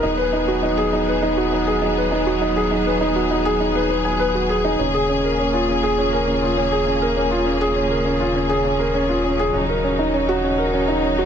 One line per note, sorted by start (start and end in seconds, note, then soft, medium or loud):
0.03 4.76 D#1 medium
0.03 4.75 F#3 medium
0.03 4.75 B3 medium
0.03 0.12 D#4 medium
0.03 9.50 G#4 medium
0.17 0.32 B4 medium
0.33 0.41 D#4 medium
0.48 0.62 F#4 medium
0.63 0.77 D#4 medium
0.77 0.92 G#4 loud
0.93 1.01 D#4 medium
1.08 1.22 B4 medium
1.22 1.31 D#4 medium
1.37 1.51 F#4 medium
1.52 1.66 D#4 medium
1.67 1.81 G#4 medium
1.82 1.90 D#4 medium
1.97 2.11 B4 medium
2.12 2.20 D#4 medium
2.26 2.40 F#4 medium
2.41 2.55 D#4 medium
2.56 2.70 G#4 loud
2.71 2.80 D#4 medium
2.86 3.00 B4 medium
3.01 3.09 D#4 medium
3.16 3.30 F#4 medium
3.31 3.45 D#4 medium
3.45 3.59 G#4 loud
3.60 3.69 D#4 medium
3.75 3.88 B4 medium
3.90 4.04 B4 medium
4.05 4.13 G#5 medium
4.19 4.34 B4 medium
4.35 4.49 F#4 medium
4.49 4.58 G#4 medium
4.64 4.78 D#4 loud
4.78 9.51 D#1 medium
4.78 11.25 C#3 medium
4.78 9.50 A#3 medium
4.78 4.93 C#4 medium
4.94 5.08 G#4 medium
5.09 5.17 C#4 medium
5.24 5.38 A#4 medium
5.39 5.47 C#4 medium
5.53 5.67 F4 medium
5.69 5.82 C#4 medium
5.83 5.97 G#4 loud
5.98 6.06 C#4 medium
6.13 6.27 A#4 medium
6.27 6.36 C#4 medium
6.42 6.56 F4 medium
6.57 6.71 C#4 medium
6.72 6.86 G#4 medium
6.87 6.95 C#4 medium
7.02 7.16 A#4 medium
7.16 7.25 C#4 medium
7.31 7.45 F4 medium
7.46 7.60 C#4 medium
7.61 7.75 G#4 loud
7.76 7.84 C#4 medium
7.90 8.05 A#4 medium
8.05 8.14 C#4 medium
8.20 8.34 F4 medium
8.35 8.49 C#4 medium
8.49 8.64 G#4 loud
8.65 8.73 C#4 medium
8.79 8.94 A#4 medium
8.94 9.03 C#4 medium
9.09 9.23 F4 medium
9.24 9.38 C#4 medium
9.39 9.53 G#4 loud
9.54 11.25 D#1 medium
9.54 11.25 F#3 medium
9.54 9.62 C#4 medium
9.54 11.25 D#4 medium
9.69 9.83 A#4 medium
9.84 9.92 C#4 medium
9.99 10.13 D#4 medium
10.14 10.28 C#4 medium
10.29 10.43 F#4 loud
10.44 10.52 C#4 medium
10.58 10.72 A#4 medium
10.73 10.82 C#4 medium
10.88 11.02 D#4 medium
11.03 11.17 C#4 medium
11.18 11.25 F#4 medium